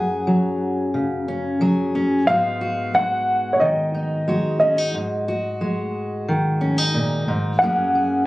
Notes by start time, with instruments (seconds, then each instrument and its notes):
Already playing: steel-string acoustic guitar F#2 C#4 G#4, upright piano F#5
0.27 steel-string acoustic guitar F#3
0.94 steel-string acoustic guitar C#3
1.28 steel-string acoustic guitar C#4
1.61 steel-string acoustic guitar F#3 G#4
1.95 steel-string acoustic guitar C#4
2.27 steel-string acoustic guitar G#2 G#3 B3 D#4 F#4, upright piano F5
2.61 steel-string acoustic guitar F#4
2.94 steel-string acoustic guitar G#3, upright piano F#5
3.53 upright piano C#5
3.60 steel-string acoustic guitar D#3, upright piano D#5
3.94 steel-string acoustic guitar D#4
4.28 steel-string acoustic guitar G#3 F#4
4.60 steel-string acoustic guitar C#4, upright piano D#5
4.78 steel-string acoustic guitar D#4
4.94 steel-string acoustic guitar G#2
5.28 steel-string acoustic guitar F#4
5.61 steel-string acoustic guitar G#3
6.28 steel-string acoustic guitar D#3
6.61 steel-string acoustic guitar C#4
6.78 steel-string acoustic guitar D#4
6.94 steel-string acoustic guitar A#2
7.28 steel-string acoustic guitar G#2
7.59 steel-string acoustic guitar F#2 F#3, upright piano F#5
7.63 steel-string acoustic guitar A#3 C#4 G#4
7.95 steel-string acoustic guitar G#4